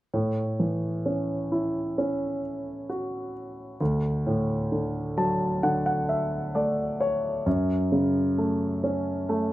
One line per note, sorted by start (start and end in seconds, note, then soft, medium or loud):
0.14 3.77 A2 soft
0.59 2.40 E3 soft
1.06 1.97 C#4 soft
1.52 3.31 E4 soft
1.98 3.77 C#4 soft
2.89 3.78 F#4 soft
3.81 7.42 D2 soft
4.27 6.05 A2 soft
4.72 5.62 D3 soft
5.17 6.96 F#3 soft
5.17 5.60 A5 soft
5.63 7.42 D3 soft
5.63 5.84 F#5 soft
5.86 6.07 F#5 soft
6.09 6.51 E5 soft
6.55 7.43 A3 soft
6.55 6.97 D5 soft
7.01 7.43 C#5 soft
7.46 9.53 F#2 soft
7.92 9.53 C#3 soft
8.38 9.28 A3 soft
8.84 9.53 C#4 soft
9.29 9.53 A3 soft